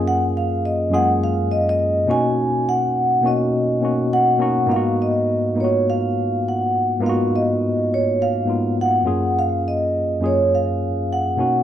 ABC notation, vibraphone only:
X:1
M:4/4
L:1/16
Q:"Swing 16ths" 1/4=103
K:G#dor
V:1 name="Vibraphone"
f2 e2 d2 f2 e2 d d3 g2- | g2 f4 d6 f4 | e2 d4 c2 e4 f4 | e2 d4 c2 e4 f4 |
e2 d4 c2 e4 f4 |]